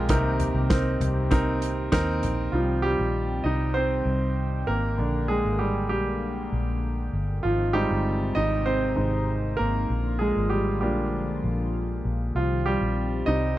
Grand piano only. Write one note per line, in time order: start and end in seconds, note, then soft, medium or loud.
0.00 0.11 G#3 medium
0.00 0.11 F4 medium
0.00 0.11 G4 medium
0.00 0.10 A#4 loud
0.10 0.97 C3 medium
0.10 0.65 C4 medium
0.10 0.65 D#4 medium
0.10 0.65 A#4 medium
0.70 1.25 C4 medium
0.70 1.26 D#4 medium
0.70 1.26 A#4 medium
1.31 1.86 C4 medium
1.31 1.87 D#4 medium
1.31 1.87 A#4 medium
1.92 2.48 C4 medium
1.92 2.48 D#4 medium
1.92 2.48 A#4 loud
2.52 2.83 F3 medium
2.52 2.83 G3 soft
2.52 2.94 C4 soft
2.52 2.95 D#4 soft
2.52 2.84 F4 medium
2.82 3.42 G3 medium
2.82 3.47 G4 medium
3.44 3.74 D#4 medium
3.44 3.76 D#5 medium
3.74 4.65 C4 medium
3.74 4.63 C5 medium
4.67 4.97 A#3 medium
4.67 5.25 A#4 medium
4.98 7.40 D3 soft
4.98 7.40 A#3 soft
4.98 7.41 D4 soft
5.28 5.59 G#3 medium
5.28 5.61 G#4 medium
5.59 5.89 G3 medium
5.59 5.88 G4 medium
5.89 7.10 G3 soft
5.89 7.09 G4 medium
7.43 7.73 F3 medium
7.43 7.75 F4 medium
7.73 8.33 G3 medium
7.73 8.63 G#3 soft
7.73 8.63 C4 soft
7.73 8.35 D#4 medium
7.73 8.38 G4 medium
8.35 8.43 D#4 medium
8.35 8.42 D#5 medium
8.66 8.95 C4 medium
8.66 9.61 C5 medium
8.96 9.24 G#3 soft
8.96 9.25 C4 soft
8.96 9.25 D#4 soft
9.57 10.16 A#3 medium
9.57 10.21 A#4 medium
10.19 10.28 G#3 medium
10.19 10.26 G#4 medium
10.50 10.80 G3 medium
10.50 10.79 G4 medium
10.81 11.70 F3 soft
10.81 12.01 G3 soft
10.81 11.70 A#3 soft
10.81 11.70 D4 soft
10.81 12.00 G4 medium
12.36 12.65 F3 medium
12.36 12.67 F4 medium
12.66 13.24 G3 medium
12.66 13.29 G4 medium
13.26 13.58 G3 soft
13.26 13.57 C4 soft
13.26 13.58 D#4 medium
13.26 13.58 D#5 medium